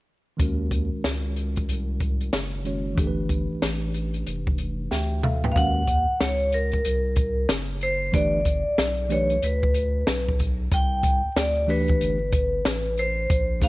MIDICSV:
0, 0, Header, 1, 5, 480
1, 0, Start_track
1, 0, Tempo, 645161
1, 294, Time_signature, 4, 2, 24, 8
1, 10181, End_track
2, 0, Start_track
2, 0, Title_t, "Vibraphone"
2, 0, Program_c, 0, 11
2, 4104, Note_on_c, 0, 77, 72
2, 4137, Note_off_c, 0, 77, 0
2, 4146, Note_on_c, 0, 78, 108
2, 4629, Note_on_c, 0, 73, 79
2, 4634, Note_off_c, 0, 78, 0
2, 4867, Note_on_c, 0, 70, 76
2, 4868, Note_off_c, 0, 73, 0
2, 5551, Note_off_c, 0, 70, 0
2, 5824, Note_on_c, 0, 72, 95
2, 6042, Note_off_c, 0, 72, 0
2, 6062, Note_on_c, 0, 74, 98
2, 6786, Note_on_c, 0, 73, 86
2, 6799, Note_off_c, 0, 74, 0
2, 7025, Note_on_c, 0, 71, 76
2, 7027, Note_off_c, 0, 73, 0
2, 7709, Note_off_c, 0, 71, 0
2, 7989, Note_on_c, 0, 79, 104
2, 8473, Note_on_c, 0, 74, 85
2, 8476, Note_off_c, 0, 79, 0
2, 8687, Note_off_c, 0, 74, 0
2, 8706, Note_on_c, 0, 71, 87
2, 9666, Note_on_c, 0, 72, 89
2, 9688, Note_off_c, 0, 71, 0
2, 10110, Note_off_c, 0, 72, 0
2, 10144, Note_on_c, 0, 77, 93
2, 10181, Note_off_c, 0, 77, 0
2, 10181, End_track
3, 0, Start_track
3, 0, Title_t, "Tine electric piano"
3, 0, Program_c, 1, 4
3, 275, Note_on_c, 1, 51, 59
3, 285, Note_on_c, 1, 56, 57
3, 295, Note_on_c, 1, 61, 53
3, 306, Note_on_c, 1, 66, 53
3, 315, Note_on_c, 1, 70, 60
3, 1934, Note_off_c, 1, 51, 0
3, 1940, Note_off_c, 1, 56, 0
3, 1945, Note_off_c, 1, 61, 0
3, 1950, Note_off_c, 1, 66, 0
3, 1955, Note_off_c, 1, 70, 0
3, 1965, Note_on_c, 1, 51, 44
3, 1970, Note_on_c, 1, 56, 43
3, 1974, Note_on_c, 1, 61, 45
3, 1980, Note_on_c, 1, 66, 44
3, 1984, Note_on_c, 1, 73, 53
3, 2196, Note_on_c, 1, 52, 62
3, 2206, Note_on_c, 1, 57, 54
3, 2209, Note_off_c, 1, 51, 0
3, 2212, Note_off_c, 1, 56, 0
3, 2214, Note_off_c, 1, 61, 0
3, 2217, Note_off_c, 1, 66, 0
3, 2217, Note_on_c, 1, 62, 56
3, 2219, Note_off_c, 1, 73, 0
3, 2226, Note_on_c, 1, 67, 59
3, 2237, Note_on_c, 1, 69, 53
3, 2286, Note_on_c, 1, 71, 68
3, 2287, Note_off_c, 1, 69, 0
3, 3631, Note_off_c, 1, 67, 0
3, 3653, Note_on_c, 1, 76, 55
3, 3654, Note_on_c, 1, 79, 69
3, 3659, Note_on_c, 1, 67, 50
3, 3662, Note_off_c, 1, 71, 0
3, 3877, Note_off_c, 1, 79, 0
3, 3881, Note_off_c, 1, 76, 0
3, 3884, Note_off_c, 1, 67, 0
3, 3898, Note_on_c, 1, 76, 59
3, 3898, Note_on_c, 1, 77, 66
3, 3903, Note_on_c, 1, 69, 53
3, 4042, Note_off_c, 1, 77, 0
3, 4045, Note_off_c, 1, 69, 0
3, 4051, Note_on_c, 1, 79, 60
3, 4055, Note_on_c, 1, 71, 54
3, 4095, Note_off_c, 1, 52, 0
3, 4100, Note_off_c, 1, 57, 0
3, 4106, Note_off_c, 1, 62, 0
3, 4119, Note_off_c, 1, 76, 0
3, 4123, Note_on_c, 1, 51, 70
3, 4129, Note_on_c, 1, 56, 63
3, 4134, Note_on_c, 1, 61, 60
3, 4139, Note_on_c, 1, 66, 64
3, 4145, Note_on_c, 1, 70, 71
3, 4277, Note_off_c, 1, 79, 0
3, 4279, Note_off_c, 1, 71, 0
3, 4317, Note_off_c, 1, 51, 0
3, 4320, Note_off_c, 1, 56, 0
3, 4322, Note_off_c, 1, 61, 0
3, 4325, Note_off_c, 1, 66, 0
3, 4328, Note_off_c, 1, 70, 0
3, 6042, Note_on_c, 1, 52, 68
3, 6047, Note_on_c, 1, 57, 57
3, 6053, Note_on_c, 1, 62, 61
3, 6059, Note_on_c, 1, 67, 58
3, 6063, Note_on_c, 1, 71, 75
3, 6236, Note_off_c, 1, 52, 0
3, 6239, Note_off_c, 1, 57, 0
3, 6242, Note_off_c, 1, 62, 0
3, 6244, Note_off_c, 1, 67, 0
3, 6247, Note_off_c, 1, 71, 0
3, 6763, Note_on_c, 1, 52, 59
3, 6768, Note_on_c, 1, 57, 56
3, 6773, Note_on_c, 1, 62, 53
3, 6777, Note_on_c, 1, 67, 57
3, 6783, Note_on_c, 1, 71, 67
3, 6956, Note_off_c, 1, 52, 0
3, 6959, Note_off_c, 1, 57, 0
3, 6962, Note_off_c, 1, 62, 0
3, 6964, Note_off_c, 1, 67, 0
3, 6967, Note_off_c, 1, 71, 0
3, 8683, Note_on_c, 1, 52, 69
3, 8689, Note_on_c, 1, 57, 60
3, 8695, Note_on_c, 1, 62, 62
3, 8700, Note_on_c, 1, 67, 68
3, 8704, Note_on_c, 1, 71, 80
3, 9052, Note_off_c, 1, 52, 0
3, 9054, Note_off_c, 1, 57, 0
3, 9057, Note_off_c, 1, 62, 0
3, 9060, Note_off_c, 1, 67, 0
3, 9062, Note_off_c, 1, 71, 0
3, 10123, Note_on_c, 1, 53, 57
3, 10129, Note_on_c, 1, 58, 55
3, 10131, Note_on_c, 1, 63, 57
3, 10138, Note_on_c, 1, 68, 51
3, 10143, Note_on_c, 1, 72, 67
3, 10181, Note_off_c, 1, 53, 0
3, 10181, Note_off_c, 1, 58, 0
3, 10181, Note_off_c, 1, 63, 0
3, 10181, Note_off_c, 1, 68, 0
3, 10181, Note_off_c, 1, 72, 0
3, 10181, End_track
4, 0, Start_track
4, 0, Title_t, "Analog synth bass"
4, 0, Program_c, 2, 38
4, 294, Note_on_c, 2, 39, 95
4, 668, Note_off_c, 2, 39, 0
4, 690, Note_on_c, 2, 37, 45
4, 724, Note_off_c, 2, 37, 0
4, 777, Note_on_c, 2, 37, 85
4, 1231, Note_off_c, 2, 37, 0
4, 1255, Note_on_c, 2, 36, 89
4, 1710, Note_off_c, 2, 36, 0
4, 1736, Note_on_c, 2, 30, 85
4, 2191, Note_off_c, 2, 30, 0
4, 2214, Note_on_c, 2, 31, 98
4, 2588, Note_off_c, 2, 31, 0
4, 2612, Note_on_c, 2, 33, 47
4, 2645, Note_off_c, 2, 33, 0
4, 2699, Note_on_c, 2, 33, 90
4, 3153, Note_off_c, 2, 33, 0
4, 3177, Note_on_c, 2, 29, 88
4, 3631, Note_off_c, 2, 29, 0
4, 3657, Note_on_c, 2, 38, 89
4, 4112, Note_off_c, 2, 38, 0
4, 4136, Note_on_c, 2, 39, 109
4, 4509, Note_off_c, 2, 39, 0
4, 4531, Note_on_c, 2, 37, 47
4, 4565, Note_off_c, 2, 37, 0
4, 4618, Note_on_c, 2, 37, 102
4, 5072, Note_off_c, 2, 37, 0
4, 5101, Note_on_c, 2, 36, 93
4, 5554, Note_off_c, 2, 36, 0
4, 5577, Note_on_c, 2, 30, 92
4, 6031, Note_off_c, 2, 30, 0
4, 6054, Note_on_c, 2, 31, 115
4, 6428, Note_off_c, 2, 31, 0
4, 6452, Note_on_c, 2, 35, 48
4, 6485, Note_off_c, 2, 35, 0
4, 6536, Note_on_c, 2, 35, 89
4, 6991, Note_off_c, 2, 35, 0
4, 7015, Note_on_c, 2, 38, 100
4, 7471, Note_off_c, 2, 38, 0
4, 7496, Note_on_c, 2, 35, 92
4, 7951, Note_off_c, 2, 35, 0
4, 7974, Note_on_c, 2, 36, 111
4, 8348, Note_off_c, 2, 36, 0
4, 8368, Note_on_c, 2, 38, 47
4, 8403, Note_off_c, 2, 38, 0
4, 8452, Note_on_c, 2, 38, 85
4, 8909, Note_off_c, 2, 38, 0
4, 8935, Note_on_c, 2, 31, 94
4, 9390, Note_off_c, 2, 31, 0
4, 9416, Note_on_c, 2, 33, 88
4, 9871, Note_off_c, 2, 33, 0
4, 9896, Note_on_c, 2, 34, 109
4, 10181, Note_off_c, 2, 34, 0
4, 10181, End_track
5, 0, Start_track
5, 0, Title_t, "Drums"
5, 293, Note_on_c, 9, 42, 68
5, 294, Note_on_c, 9, 36, 93
5, 368, Note_off_c, 9, 36, 0
5, 368, Note_off_c, 9, 42, 0
5, 529, Note_on_c, 9, 36, 80
5, 532, Note_on_c, 9, 42, 63
5, 603, Note_off_c, 9, 36, 0
5, 607, Note_off_c, 9, 42, 0
5, 776, Note_on_c, 9, 38, 87
5, 782, Note_on_c, 9, 42, 76
5, 850, Note_off_c, 9, 38, 0
5, 856, Note_off_c, 9, 42, 0
5, 1014, Note_on_c, 9, 42, 64
5, 1088, Note_off_c, 9, 42, 0
5, 1160, Note_on_c, 9, 42, 42
5, 1170, Note_on_c, 9, 36, 83
5, 1235, Note_off_c, 9, 42, 0
5, 1245, Note_off_c, 9, 36, 0
5, 1256, Note_on_c, 9, 42, 77
5, 1330, Note_off_c, 9, 42, 0
5, 1489, Note_on_c, 9, 42, 61
5, 1491, Note_on_c, 9, 36, 79
5, 1563, Note_off_c, 9, 42, 0
5, 1565, Note_off_c, 9, 36, 0
5, 1642, Note_on_c, 9, 42, 42
5, 1716, Note_off_c, 9, 42, 0
5, 1732, Note_on_c, 9, 38, 93
5, 1733, Note_on_c, 9, 42, 82
5, 1806, Note_off_c, 9, 38, 0
5, 1807, Note_off_c, 9, 42, 0
5, 1973, Note_on_c, 9, 42, 53
5, 2047, Note_off_c, 9, 42, 0
5, 2213, Note_on_c, 9, 42, 77
5, 2214, Note_on_c, 9, 36, 107
5, 2287, Note_off_c, 9, 42, 0
5, 2289, Note_off_c, 9, 36, 0
5, 2450, Note_on_c, 9, 36, 75
5, 2451, Note_on_c, 9, 42, 61
5, 2524, Note_off_c, 9, 36, 0
5, 2526, Note_off_c, 9, 42, 0
5, 2694, Note_on_c, 9, 38, 88
5, 2700, Note_on_c, 9, 42, 76
5, 2769, Note_off_c, 9, 38, 0
5, 2775, Note_off_c, 9, 42, 0
5, 2934, Note_on_c, 9, 42, 67
5, 3008, Note_off_c, 9, 42, 0
5, 3078, Note_on_c, 9, 42, 46
5, 3153, Note_off_c, 9, 42, 0
5, 3173, Note_on_c, 9, 42, 78
5, 3248, Note_off_c, 9, 42, 0
5, 3326, Note_on_c, 9, 36, 80
5, 3401, Note_off_c, 9, 36, 0
5, 3409, Note_on_c, 9, 42, 61
5, 3483, Note_off_c, 9, 42, 0
5, 3656, Note_on_c, 9, 38, 50
5, 3730, Note_off_c, 9, 38, 0
5, 3894, Note_on_c, 9, 45, 80
5, 3968, Note_off_c, 9, 45, 0
5, 4047, Note_on_c, 9, 43, 74
5, 4121, Note_off_c, 9, 43, 0
5, 4135, Note_on_c, 9, 36, 109
5, 4136, Note_on_c, 9, 42, 77
5, 4210, Note_off_c, 9, 36, 0
5, 4210, Note_off_c, 9, 42, 0
5, 4370, Note_on_c, 9, 36, 84
5, 4372, Note_on_c, 9, 42, 68
5, 4445, Note_off_c, 9, 36, 0
5, 4446, Note_off_c, 9, 42, 0
5, 4616, Note_on_c, 9, 38, 104
5, 4622, Note_on_c, 9, 42, 78
5, 4691, Note_off_c, 9, 38, 0
5, 4697, Note_off_c, 9, 42, 0
5, 4854, Note_on_c, 9, 42, 70
5, 4928, Note_off_c, 9, 42, 0
5, 4998, Note_on_c, 9, 42, 46
5, 5010, Note_on_c, 9, 36, 81
5, 5072, Note_off_c, 9, 42, 0
5, 5085, Note_off_c, 9, 36, 0
5, 5095, Note_on_c, 9, 42, 94
5, 5169, Note_off_c, 9, 42, 0
5, 5326, Note_on_c, 9, 42, 70
5, 5331, Note_on_c, 9, 36, 89
5, 5400, Note_off_c, 9, 42, 0
5, 5405, Note_off_c, 9, 36, 0
5, 5572, Note_on_c, 9, 38, 106
5, 5572, Note_on_c, 9, 42, 96
5, 5646, Note_off_c, 9, 38, 0
5, 5647, Note_off_c, 9, 42, 0
5, 5812, Note_on_c, 9, 42, 65
5, 5886, Note_off_c, 9, 42, 0
5, 6053, Note_on_c, 9, 42, 83
5, 6054, Note_on_c, 9, 36, 115
5, 6127, Note_off_c, 9, 42, 0
5, 6128, Note_off_c, 9, 36, 0
5, 6289, Note_on_c, 9, 36, 86
5, 6292, Note_on_c, 9, 42, 72
5, 6363, Note_off_c, 9, 36, 0
5, 6366, Note_off_c, 9, 42, 0
5, 6534, Note_on_c, 9, 38, 92
5, 6540, Note_on_c, 9, 42, 78
5, 6608, Note_off_c, 9, 38, 0
5, 6614, Note_off_c, 9, 42, 0
5, 6771, Note_on_c, 9, 42, 70
5, 6845, Note_off_c, 9, 42, 0
5, 6917, Note_on_c, 9, 42, 48
5, 6992, Note_off_c, 9, 42, 0
5, 7012, Note_on_c, 9, 42, 90
5, 7087, Note_off_c, 9, 42, 0
5, 7165, Note_on_c, 9, 36, 81
5, 7240, Note_off_c, 9, 36, 0
5, 7249, Note_on_c, 9, 42, 73
5, 7323, Note_off_c, 9, 42, 0
5, 7492, Note_on_c, 9, 38, 107
5, 7493, Note_on_c, 9, 42, 98
5, 7567, Note_off_c, 9, 38, 0
5, 7568, Note_off_c, 9, 42, 0
5, 7652, Note_on_c, 9, 36, 88
5, 7727, Note_off_c, 9, 36, 0
5, 7733, Note_on_c, 9, 42, 66
5, 7738, Note_on_c, 9, 36, 84
5, 7808, Note_off_c, 9, 42, 0
5, 7812, Note_off_c, 9, 36, 0
5, 7973, Note_on_c, 9, 36, 117
5, 7974, Note_on_c, 9, 42, 82
5, 8047, Note_off_c, 9, 36, 0
5, 8048, Note_off_c, 9, 42, 0
5, 8208, Note_on_c, 9, 36, 86
5, 8210, Note_on_c, 9, 42, 71
5, 8282, Note_off_c, 9, 36, 0
5, 8285, Note_off_c, 9, 42, 0
5, 8455, Note_on_c, 9, 38, 100
5, 8461, Note_on_c, 9, 42, 79
5, 8529, Note_off_c, 9, 38, 0
5, 8535, Note_off_c, 9, 42, 0
5, 8694, Note_on_c, 9, 46, 49
5, 8768, Note_off_c, 9, 46, 0
5, 8839, Note_on_c, 9, 42, 50
5, 8849, Note_on_c, 9, 36, 87
5, 8913, Note_off_c, 9, 42, 0
5, 8923, Note_off_c, 9, 36, 0
5, 8935, Note_on_c, 9, 42, 88
5, 9009, Note_off_c, 9, 42, 0
5, 9169, Note_on_c, 9, 42, 72
5, 9170, Note_on_c, 9, 36, 97
5, 9243, Note_off_c, 9, 42, 0
5, 9245, Note_off_c, 9, 36, 0
5, 9413, Note_on_c, 9, 38, 109
5, 9414, Note_on_c, 9, 42, 97
5, 9488, Note_off_c, 9, 38, 0
5, 9488, Note_off_c, 9, 42, 0
5, 9654, Note_on_c, 9, 42, 61
5, 9728, Note_off_c, 9, 42, 0
5, 9895, Note_on_c, 9, 36, 116
5, 9897, Note_on_c, 9, 42, 76
5, 9969, Note_off_c, 9, 36, 0
5, 9972, Note_off_c, 9, 42, 0
5, 10130, Note_on_c, 9, 36, 87
5, 10133, Note_on_c, 9, 42, 73
5, 10181, Note_off_c, 9, 36, 0
5, 10181, Note_off_c, 9, 42, 0
5, 10181, End_track
0, 0, End_of_file